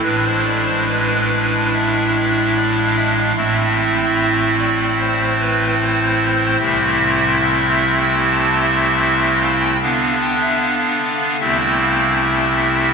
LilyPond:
<<
  \new Staff \with { instrumentName = "Pipe organ" } { \time 4/4 \key a \minor \tempo 4 = 74 b'16 c''16 d''16 c''16 b'4 e''4 d''16 f''16 e''16 f''16 | e''4. d''8 c''8 b'8 c''4 | e''4 e''8. g''16 a''8 e''4 f''16 g''16 | f''8 g''16 e''16 f''4 e''16 g''16 f''8 e''4 | }
  \new Staff \with { instrumentName = "Pipe organ" } { \time 4/4 \key a \minor <a,, a, gis d' e'>1 | <a,, a, a c' e'>1 | <c, c a c' e'>1 | <d b d'>2 <c, c a c' e'>2 | }
>>